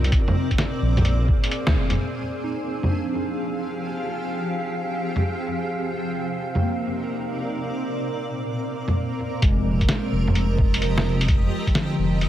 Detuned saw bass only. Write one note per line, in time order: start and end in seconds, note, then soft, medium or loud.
0.00 0.11 C2 medium
0.82 1.27 A#1 loud
1.67 1.76 D2 medium
1.75 1.97 F1 medium
9.42 9.88 F1 loud
10.12 10.57 F1 loud
10.59 11.50 F1 medium
11.98 12.29 F1 loud